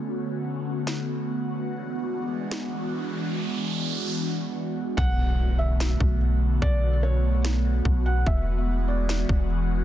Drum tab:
SD |----o---|----o---|--------|----o---|
BD |--------|--------|--------|o----o--|

SD |----o---|----o---|
BD |o-----o-|o----o--|